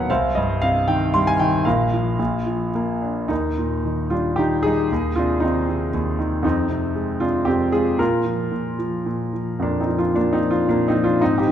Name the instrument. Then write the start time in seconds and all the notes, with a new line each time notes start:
grand piano
Already playing: D#1 D#2 B2 D#3 F#3 B3 B4 C#5 F5 F#5 G#5
0.10 C2 C5 F5
0.35 G2 D#5
0.62 C3 F5
0.88 D#3 G5
1.14 G3 C6
1.27 G#5
1.39 D#3 G5
1.65 A#1 A#2 A#4 F5
1.93 F3
2.19 A#1 A#2
2.46 F3
2.75 A#3
3.02 D4
3.28 D#2 A#3 D#4
3.58 A#2
3.85 D#3
4.10 G3 D4 F4
4.36 D#3 D#4 G4
4.63 G3 D#4 G#4
4.92 D#2
5.16 C3 D4 F4
5.40 D#3 D#4
5.44 C4
5.69 C3
5.94 D#2
6.19 D#3
6.43 F2 C4 D#4
6.69 C3
6.95 G#3
7.20 C3 D4 F4
7.45 F2 C4 G4
7.72 G#3 F4 G#4
7.98 A#2 F4 A#4
8.25 F3
8.52 A#2
8.79 F3
9.06 A#2
9.33 F3
9.60 F2 A#3 D4
9.80 C4 D#4
9.87 F3
9.98 D4 F4
10.14 A#2 A#3 D4
10.33 C4 D#4
10.40 F3
10.51 D4 F4
10.67 A#2 A#3 D4
10.88 C4 D#4
10.95 F3
11.04 D4 F4
11.21 G#2 C4 D#4
11.38 D#4 G4
11.47 D#3